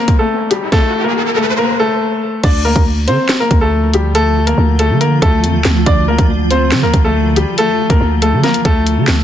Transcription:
Already playing: A#3 A#4, riser
0.08 kick, closed hi-hat
0.19 A3 A4
0.51 G3 G4, closed hi-hat
0.72 A3 A4, kick, snare
1.04 A#3 A#4
1.36 A3 A4
1.58 A#3 A#4
1.80 A3 A4
2.44 D2 D3 F3 D4 F4 D5, kick, closed hi-hat, crash
2.65 A#3 A#4
2.76 D2, kick, closed hi-hat
3.07 D3 C4 C5, closed hi-hat
3.29 snare, clap, closed hi-hat
3.40 A#3 A#4
3.51 D2, kick, closed hi-hat
3.61 A3 A4
3.94 G3 G4, closed hi-hat
4.15 A3 A4, closed hi-hat
4.47 A#3 A#4, closed hi-hat
4.58 D2
4.79 A3 A4, closed hi-hat
4.90 D3
5.01 A#3 A#4, closed hi-hat
5.22 D2 A3 A4, kick, closed hi-hat
5.44 F2, closed hi-hat
5.54 D2
5.65 D2, snare, clap, closed hi-hat
5.86 D2 D4 D5, kick, closed hi-hat
6.08 A#3 A#4
6.18 D2, kick, closed hi-hat
6.51 C4 C5, closed hi-hat
6.72 D3, snare, clap, closed hi-hat
6.83 D2 A#3 A#4
6.94 D2, kick, closed hi-hat
7.05 A3 A4
7.36 G3 G4, closed hi-hat
7.58 A3 A4, closed hi-hat
7.90 D2 A#3 A#4, kick, closed hi-hat
8.01 D2
8.22 A3 A4, closed hi-hat
8.33 D3
8.44 A#3 A#4, snare, closed hi-hat
8.54 closed hi-hat
8.65 D2 A3 A4, kick, closed hi-hat
8.87 closed hi-hat
8.97 D3
9.07 D2, snare, clap, open hi-hat

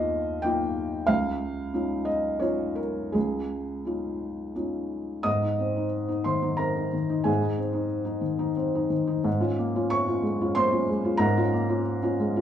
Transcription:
Already playing: D#2 A#3 D#4 F4 D#5 F5
0.42 A#3 D#4 F4 G5
1.07 C#2 F5
1.74 C#4 D#4 F4
2.05 D#5
2.40 C#4 D#4 F4 C#5
2.75 A#4
3.12 C#2 G#4
3.85 C#4 D#4 F4
4.55 C#4 D#4 F4
5.23 G#2 D#5 D#6
5.42 D#4
5.59 C4
5.76 D#4
6.08 D#4
6.24 D#3 C5 C6
6.42 D#4
6.57 C4 A#4 A#5
6.77 D#4
6.93 D#3
7.10 D#4
7.24 G#2 G#4 G#5
7.42 D#4
7.58 C4
7.73 D#4
8.05 D#4
8.21 D#3
8.39 D#4
8.56 C4
8.75 D#4
8.90 D#3
9.07 D#4
9.24 G#2
9.40 C#4 F4
9.59 A#3
9.76 C#4 F4
9.90 C#5 C#6
10.07 C#4 F4
10.23 G#3
10.41 C#4 F4
10.55 A#3 C5 C6
10.72 C#4 F4
10.89 G#3
11.04 C#4 F4
11.17 G#2 A#4 A#5
11.38 C#4 F4
11.53 A#3
11.69 C#4 F4
12.03 C#4 F4
12.20 G#3
12.36 C#4 F4

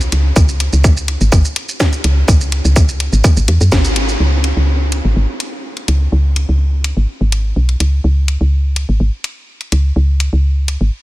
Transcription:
0.01 closed hi-hat, shaker
0.12 C#2, closed hi-hat
0.36 C#2, kick, shaker
0.49 shaker
0.60 closed hi-hat
0.73 C#2, shaker
0.84 kick, shaker
0.97 shaker
1.08 closed hi-hat
1.21 G#1, shaker
1.32 G#1, kick, shaker
1.45 shaker
1.56 closed hi-hat
1.69 shaker
1.80 kick, snare, shaker
1.93 closed hi-hat, shaker
2.04 C#2, closed hi-hat
2.28 C#2, kick, shaker
2.41 shaker
2.52 closed hi-hat
2.65 C#2, shaker
2.76 kick, shaker
2.89 shaker
3.00 closed hi-hat
3.13 G#1, shaker
3.24 kick, shaker
3.37 G#1, shaker
3.48 E2, closed hi-hat
3.61 F#2, shaker
3.72 G#1, kick, snare, shaker
3.85 closed hi-hat, shaker
3.96 closed hi-hat
4.09 shaker
4.20 C#2
4.44 closed hi-hat
4.57 C#2
4.92 closed hi-hat
5.05 G#1
5.16 G#1
5.40 closed hi-hat
5.77 closed hi-hat
5.88 C#2, closed hi-hat
6.12 C#2
6.36 closed hi-hat
6.49 C#2
6.84 closed hi-hat
6.97 G#1
7.21 G#1
7.32 closed hi-hat
7.56 B1
7.69 closed hi-hat
7.80 C#2, closed hi-hat
8.04 C#2
8.28 closed hi-hat
8.41 C#2
8.76 closed hi-hat
8.89 G#1
9.00 G#1
9.24 closed hi-hat
9.61 closed hi-hat
9.72 C#2, closed hi-hat
9.96 C#2
10.20 closed hi-hat
10.33 C#2
10.68 closed hi-hat
10.81 G#1

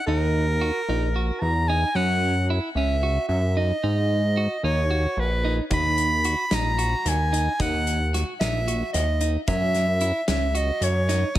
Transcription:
0.06 D#2 D#4 A#4
0.61 F#4
0.88 A#1 D#4
1.16 F#4
1.41 E2 A#5
1.68 D#4 G#5
1.95 F#2 C#4 F#5
2.50 E4
2.75 C#2 C#4 E5
3.03 F#4
3.28 F#2 E5
3.57 D#4 D#5
3.83 G#2 D#4
4.37 F#4
4.63 D#2 D#4 C#5
4.91 F#4
5.17 A#1 B4
5.45 D#4
5.70 D#2 D#4 B5, kick, closed hi-hat
5.98 closed hi-hat
6.24 F#4, closed hi-hat
6.51 A#1 D#4 A#5, snare, closed hi-hat
6.78 F#4, closed hi-hat
7.05 D#2 G#5, snare, closed hi-hat
7.33 D#4, closed hi-hat
7.60 D#2 D#4 F#5, kick, closed hi-hat
7.87 closed hi-hat
8.14 F#4, snare, closed hi-hat
8.40 A#1 D#4 E5, snare, closed hi-hat
8.68 F#4, closed hi-hat
8.93 D#2 D#5, snare, closed hi-hat
9.21 D#4, closed hi-hat
9.48 F#2 C#4 E5, kick, closed hi-hat
9.74 snare, closed hi-hat
10.01 E4, closed hi-hat
10.28 C#2 C#4 E5, snare, closed hi-hat
10.55 F#4 D#5, closed hi-hat
10.81 F#2 C#5, closed hi-hat
11.09 D#4, snare, closed hi-hat
11.35 B1 D#4, kick, closed hi-hat

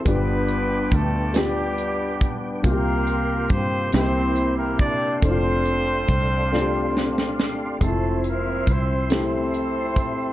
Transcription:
0.05 G1 G2 B3 D4 F4 G4 B4 G5 D6, kick, closed hi-hat
0.48 closed hi-hat
0.91 D2 A3 A4, kick, closed hi-hat
1.34 B3 D4 F4 G4, snare, closed hi-hat
1.38 G3 G4
1.78 closed hi-hat
2.21 kick, closed hi-hat
2.63 C2 C3 A#3 C4 F4 F#4 G4 A#4 C6, kick, closed hi-hat
2.68 A#3 A#4
2.72 G4
3.07 closed hi-hat
3.49 G2 C4 C5, kick, closed hi-hat
3.92 C2 C3 A#3 C4 D#4 E4 G4 C5 E5, snare, closed hi-hat
4.01 E4
4.36 closed hi-hat
4.58 A#3 A#4
4.79 D4 D5, kick, closed hi-hat
5.22 F1 A3 C4 D4 E4 A4 C5 D5 F5, kick, closed hi-hat
5.31 F4
5.65 closed hi-hat
6.08 C2, kick, closed hi-hat
6.52 A3 C4 D4 F4, snare
6.60 G4
6.97 snare
7.18 snare
7.40 snare
7.81 F1 G#3 A3 C4 E4 A4 C5 E5 C6, kick, closed hi-hat
7.87 F3
8.24 closed hi-hat
8.28 A#3 A#4
8.67 C2, kick, closed hi-hat
8.72 C4 C5
9.10 A3 C4 E4 G4 A4 C5, snare, closed hi-hat
9.54 closed hi-hat
9.96 kick, closed hi-hat

